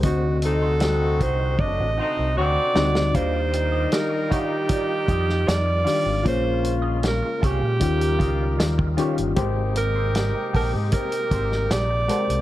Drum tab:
HH |x-x-x-x---------|x-x-x-x-x-x-x-o-|x-x-x-x-xxx-x-xx|x-x-x-o-xxx-x-xx|
SD |----o---------oo|----o------oo-o-|----o-------o---|----o------oo---|
BD |o-----o-o-------|o-----o-o-o-----|o-----o-o-o--o--|o-----o-o-o-----|